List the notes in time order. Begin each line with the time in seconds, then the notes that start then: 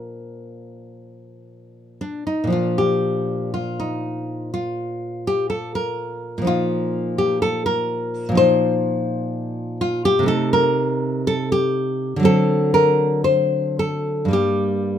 Already playing: A#2 F3 D4 A#4
2.01 D4
2.27 D#4
2.44 A#2 F3
2.50 D4 F4
2.78 G4
3.54 F4
3.80 D#4
4.54 F4
5.27 G4
5.50 A4
5.75 A#4
6.38 A#2 F3
6.45 D#4 F4
7.18 G4
7.42 A4
7.66 A#4
8.29 A#2 F3
8.35 D#4 C5
9.81 F4
10.05 G4
10.19 C3 A3
10.26 D#4 A4
10.53 A#4
11.27 A4
11.52 G4
12.16 D3 F#3
12.23 C4 A4
12.74 A#4
13.24 C5
13.79 A4
14.25 G2 G3
14.31 A#3 G4